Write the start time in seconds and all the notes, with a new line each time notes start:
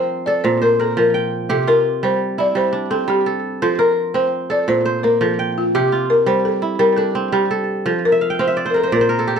Already playing: F3 C4 D4 A#4 C5
0.26 A4 D5
0.44 A#2 C5
0.62 A#4 C5
0.79 A4 A#4
0.97 F3 A#4
1.14 G5
1.49 C3 G4 A4
1.67 F4 A#4
2.03 G3 C5
2.38 E4 D5
2.55 G3 C5
2.73 D4
2.91 C4 A4
3.08 G3 G4
3.26 A4
3.62 F3 A4 C5
3.79 A#4
4.14 C4 C5
4.50 A4 D5
4.68 A#2 C5
4.85 C5
5.03 A#3 A#4
5.21 F3 A4
5.39 G5
5.58 F4
5.75 C3 G4
5.92 F4
6.10 A#4
6.26 G3 C5
6.45 A4
6.62 E4
6.79 G3 A#4
6.96 D4 A4
7.15 C4
7.32 G3 G4
7.51 A4
7.86 F3 A4
8.05 A#4
8.12 E5
8.21 F5
8.30 G5
8.39 C4 C5 F5
8.48 E5
8.57 D5
8.66 C5
8.70 A#4
8.74 A4 A#4
8.83 C5
8.92 A#2 A#4 D5
9.01 C5
9.09 A#4
9.19 A4
9.27 G4
9.36 A4